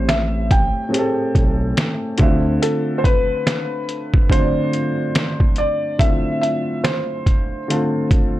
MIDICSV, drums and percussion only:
0, 0, Header, 1, 2, 480
1, 0, Start_track
1, 0, Tempo, 845070
1, 1486, Time_signature, 4, 2, 24, 8
1, 4771, End_track
2, 0, Start_track
2, 0, Title_t, "Drums"
2, 50, Note_on_c, 9, 38, 95
2, 55, Note_on_c, 9, 42, 61
2, 107, Note_off_c, 9, 38, 0
2, 112, Note_off_c, 9, 42, 0
2, 288, Note_on_c, 9, 36, 88
2, 290, Note_on_c, 9, 42, 59
2, 345, Note_off_c, 9, 36, 0
2, 347, Note_off_c, 9, 42, 0
2, 535, Note_on_c, 9, 42, 79
2, 592, Note_off_c, 9, 42, 0
2, 767, Note_on_c, 9, 36, 94
2, 770, Note_on_c, 9, 42, 59
2, 824, Note_off_c, 9, 36, 0
2, 827, Note_off_c, 9, 42, 0
2, 1007, Note_on_c, 9, 42, 78
2, 1009, Note_on_c, 9, 38, 109
2, 1064, Note_off_c, 9, 42, 0
2, 1066, Note_off_c, 9, 38, 0
2, 1236, Note_on_c, 9, 42, 64
2, 1246, Note_on_c, 9, 36, 104
2, 1293, Note_off_c, 9, 42, 0
2, 1303, Note_off_c, 9, 36, 0
2, 1492, Note_on_c, 9, 42, 93
2, 1549, Note_off_c, 9, 42, 0
2, 1728, Note_on_c, 9, 36, 96
2, 1733, Note_on_c, 9, 42, 67
2, 1785, Note_off_c, 9, 36, 0
2, 1790, Note_off_c, 9, 42, 0
2, 1970, Note_on_c, 9, 38, 92
2, 1975, Note_on_c, 9, 42, 66
2, 2027, Note_off_c, 9, 38, 0
2, 2032, Note_off_c, 9, 42, 0
2, 2208, Note_on_c, 9, 42, 60
2, 2265, Note_off_c, 9, 42, 0
2, 2349, Note_on_c, 9, 36, 93
2, 2406, Note_off_c, 9, 36, 0
2, 2440, Note_on_c, 9, 36, 83
2, 2456, Note_on_c, 9, 42, 80
2, 2497, Note_off_c, 9, 36, 0
2, 2513, Note_off_c, 9, 42, 0
2, 2689, Note_on_c, 9, 42, 64
2, 2746, Note_off_c, 9, 42, 0
2, 2926, Note_on_c, 9, 42, 80
2, 2929, Note_on_c, 9, 38, 116
2, 2983, Note_off_c, 9, 42, 0
2, 2986, Note_off_c, 9, 38, 0
2, 3067, Note_on_c, 9, 36, 86
2, 3124, Note_off_c, 9, 36, 0
2, 3157, Note_on_c, 9, 42, 63
2, 3214, Note_off_c, 9, 42, 0
2, 3405, Note_on_c, 9, 36, 122
2, 3412, Note_on_c, 9, 42, 98
2, 3461, Note_off_c, 9, 36, 0
2, 3469, Note_off_c, 9, 42, 0
2, 3654, Note_on_c, 9, 42, 64
2, 3711, Note_off_c, 9, 42, 0
2, 3888, Note_on_c, 9, 38, 101
2, 3893, Note_on_c, 9, 42, 65
2, 3945, Note_off_c, 9, 38, 0
2, 3950, Note_off_c, 9, 42, 0
2, 4126, Note_on_c, 9, 36, 82
2, 4128, Note_on_c, 9, 42, 60
2, 4183, Note_off_c, 9, 36, 0
2, 4185, Note_off_c, 9, 42, 0
2, 4376, Note_on_c, 9, 42, 79
2, 4433, Note_off_c, 9, 42, 0
2, 4605, Note_on_c, 9, 36, 91
2, 4608, Note_on_c, 9, 42, 62
2, 4662, Note_off_c, 9, 36, 0
2, 4665, Note_off_c, 9, 42, 0
2, 4771, End_track
0, 0, End_of_file